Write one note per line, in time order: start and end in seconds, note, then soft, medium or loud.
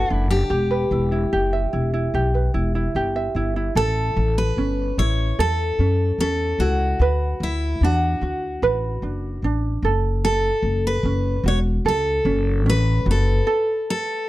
0.00 0.14 F#4 medium
0.00 0.59 A4 medium
0.00 0.71 B4 medium
0.10 0.44 F#1 medium
0.10 0.29 D4 medium
0.10 0.27 E4 medium
0.30 0.59 D4 medium
0.30 2.91 G4 medium
0.50 0.84 E1 medium
0.50 1.12 G4 medium
0.71 1.52 B4 medium
0.91 1.25 E1 medium
0.91 1.12 E4 medium
1.12 1.72 E4 soft
1.33 1.66 F#1 medium
1.33 2.13 G4 medium
1.53 3.15 E5 medium
1.73 2.07 E1 medium
1.73 1.93 E4 medium
1.94 2.34 E4 medium
2.14 2.47 B1 medium
2.14 2.95 G4 medium
2.34 2.54 B4 soft
2.54 2.88 E1 medium
2.54 2.75 E4 medium
2.75 3.36 E4 medium
2.95 3.28 G1 medium
2.95 3.85 G4 medium
3.16 3.76 E5 medium
3.35 3.68 G1 medium
3.35 3.56 E4 medium
3.56 4.98 E4 medium
3.75 4.09 A1 loud
3.75 5.39 A4 medium
3.75 4.38 A4 medium
4.16 4.50 A1 loud
4.38 4.98 B4 medium
4.56 4.90 G1 medium
4.56 5.79 C#4 medium
4.98 5.31 A1 medium
4.98 6.60 E4 medium
4.98 5.40 C#5 medium
5.39 5.72 E2 medium
5.39 7.05 A4 medium
5.39 6.19 A4 loud
5.79 6.12 F#2 medium
5.79 6.20 C#4 medium
6.18 6.52 E2 medium
6.18 7.09 C#4 medium
6.18 6.61 A4 medium
6.59 6.92 C#2 medium
6.59 7.09 E4 medium
6.59 7.43 F#4 medium
6.99 7.33 D2 medium
6.99 8.62 B4 medium
7.40 7.74 D2 medium
7.40 7.84 E4 medium
7.81 8.14 E2 medium
7.81 9.02 D4 medium
7.81 9.40 F#4 medium
8.21 8.55 D2 medium
8.21 11.45 F#4 medium
8.62 8.95 A1 medium
8.62 9.84 B4 medium
9.02 9.35 F#1 medium
9.02 9.43 D4 soft
9.42 9.76 A1 medium
9.42 9.92 D4 medium
9.82 10.49 F#1 medium
9.82 10.25 A4 medium
10.25 11.85 A4 medium
10.25 10.86 A4 medium
10.62 10.96 F#1 medium
10.87 11.47 B4 medium
11.03 11.37 F#1 medium
11.03 12.24 C#4 medium
11.44 11.77 E1 medium
11.44 13.05 F#4 medium
11.48 11.58 C#5 medium
11.85 12.18 C#2 medium
11.85 13.47 A4 medium
11.85 12.64 A4 medium
12.25 12.65 F#1 loud
12.25 12.65 C#4 medium
12.65 12.99 A1 medium
12.65 13.55 C#4 medium
12.70 13.05 B4 medium
13.06 13.39 F#1 loud
13.06 13.55 F#4 medium
13.11 13.89 A4 medium
13.47 14.29 A4 medium
13.90 14.29 A4 medium